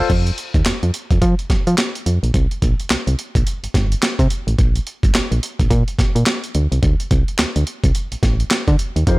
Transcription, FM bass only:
0, 0, Header, 1, 2, 480
1, 0, Start_track
1, 0, Tempo, 560748
1, 83, Time_signature, 4, 2, 24, 8
1, 7866, End_track
2, 0, Start_track
2, 0, Title_t, "FM bass"
2, 0, Program_c, 0, 39
2, 83, Note_on_c, 0, 41, 105
2, 267, Note_off_c, 0, 41, 0
2, 465, Note_on_c, 0, 39, 91
2, 539, Note_off_c, 0, 39, 0
2, 564, Note_on_c, 0, 41, 47
2, 622, Note_off_c, 0, 41, 0
2, 710, Note_on_c, 0, 41, 89
2, 782, Note_off_c, 0, 41, 0
2, 948, Note_on_c, 0, 41, 77
2, 1020, Note_off_c, 0, 41, 0
2, 1042, Note_on_c, 0, 53, 109
2, 1153, Note_off_c, 0, 53, 0
2, 1281, Note_on_c, 0, 53, 50
2, 1340, Note_off_c, 0, 53, 0
2, 1430, Note_on_c, 0, 53, 97
2, 1502, Note_off_c, 0, 53, 0
2, 1766, Note_on_c, 0, 41, 80
2, 1876, Note_off_c, 0, 41, 0
2, 1909, Note_on_c, 0, 34, 83
2, 1981, Note_off_c, 0, 34, 0
2, 2003, Note_on_c, 0, 36, 106
2, 2114, Note_off_c, 0, 36, 0
2, 2244, Note_on_c, 0, 34, 98
2, 2355, Note_off_c, 0, 34, 0
2, 2485, Note_on_c, 0, 36, 50
2, 2542, Note_off_c, 0, 36, 0
2, 2630, Note_on_c, 0, 36, 96
2, 2702, Note_off_c, 0, 36, 0
2, 2869, Note_on_c, 0, 34, 83
2, 2941, Note_off_c, 0, 34, 0
2, 3112, Note_on_c, 0, 31, 46
2, 3149, Note_off_c, 0, 31, 0
2, 3205, Note_on_c, 0, 31, 103
2, 3388, Note_off_c, 0, 31, 0
2, 3587, Note_on_c, 0, 48, 105
2, 3660, Note_off_c, 0, 48, 0
2, 3827, Note_on_c, 0, 33, 88
2, 3900, Note_off_c, 0, 33, 0
2, 3926, Note_on_c, 0, 34, 90
2, 4109, Note_off_c, 0, 34, 0
2, 4307, Note_on_c, 0, 31, 85
2, 4380, Note_off_c, 0, 31, 0
2, 4407, Note_on_c, 0, 34, 48
2, 4464, Note_off_c, 0, 34, 0
2, 4550, Note_on_c, 0, 34, 93
2, 4622, Note_off_c, 0, 34, 0
2, 4788, Note_on_c, 0, 34, 79
2, 4861, Note_off_c, 0, 34, 0
2, 4883, Note_on_c, 0, 46, 115
2, 4994, Note_off_c, 0, 46, 0
2, 5124, Note_on_c, 0, 46, 50
2, 5182, Note_off_c, 0, 46, 0
2, 5268, Note_on_c, 0, 46, 94
2, 5341, Note_off_c, 0, 46, 0
2, 5606, Note_on_c, 0, 38, 95
2, 5716, Note_off_c, 0, 38, 0
2, 5750, Note_on_c, 0, 36, 85
2, 5822, Note_off_c, 0, 36, 0
2, 5843, Note_on_c, 0, 38, 97
2, 5954, Note_off_c, 0, 38, 0
2, 6086, Note_on_c, 0, 36, 99
2, 6196, Note_off_c, 0, 36, 0
2, 6327, Note_on_c, 0, 38, 45
2, 6384, Note_off_c, 0, 38, 0
2, 6471, Note_on_c, 0, 38, 97
2, 6543, Note_off_c, 0, 38, 0
2, 6708, Note_on_c, 0, 36, 87
2, 6781, Note_off_c, 0, 36, 0
2, 6950, Note_on_c, 0, 33, 50
2, 6987, Note_off_c, 0, 33, 0
2, 7042, Note_on_c, 0, 33, 109
2, 7226, Note_off_c, 0, 33, 0
2, 7426, Note_on_c, 0, 50, 94
2, 7500, Note_off_c, 0, 50, 0
2, 7670, Note_on_c, 0, 39, 89
2, 7742, Note_off_c, 0, 39, 0
2, 7763, Note_on_c, 0, 41, 112
2, 7866, Note_off_c, 0, 41, 0
2, 7866, End_track
0, 0, End_of_file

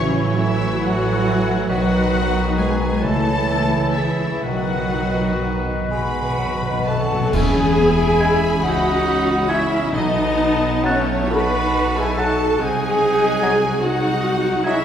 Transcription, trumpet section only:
0, 0, Header, 1, 2, 480
1, 0, Start_track
1, 0, Key_signature, 4, "major"
1, 0, Tempo, 867052
1, 939, Time_signature, 6, 3, 24, 8
1, 940, Tempo, 896861
1, 1900, Tempo, 975610
1, 2860, Tempo, 949367
1, 3820, Tempo, 860832
1, 5260, Tempo, 914634
1, 6220, Tempo, 827586
1, 8014, End_track
2, 0, Start_track
2, 0, Title_t, "Trumpet section"
2, 0, Program_c, 0, 61
2, 3102, Note_on_c, 0, 66, 83
2, 3565, Note_off_c, 0, 66, 0
2, 3586, Note_on_c, 0, 66, 78
2, 3815, Note_off_c, 0, 66, 0
2, 3821, Note_on_c, 0, 64, 101
2, 4540, Note_off_c, 0, 64, 0
2, 4540, Note_on_c, 0, 63, 100
2, 5019, Note_off_c, 0, 63, 0
2, 5024, Note_on_c, 0, 61, 80
2, 5261, Note_on_c, 0, 59, 84
2, 5262, Note_off_c, 0, 61, 0
2, 5734, Note_off_c, 0, 59, 0
2, 5749, Note_on_c, 0, 57, 80
2, 5988, Note_on_c, 0, 66, 91
2, 5991, Note_off_c, 0, 57, 0
2, 6345, Note_off_c, 0, 66, 0
2, 6349, Note_on_c, 0, 64, 79
2, 6469, Note_on_c, 0, 66, 83
2, 6471, Note_off_c, 0, 64, 0
2, 6712, Note_off_c, 0, 66, 0
2, 6713, Note_on_c, 0, 63, 92
2, 7327, Note_off_c, 0, 63, 0
2, 7425, Note_on_c, 0, 63, 94
2, 7889, Note_off_c, 0, 63, 0
2, 7900, Note_on_c, 0, 61, 79
2, 8014, Note_off_c, 0, 61, 0
2, 8014, End_track
0, 0, End_of_file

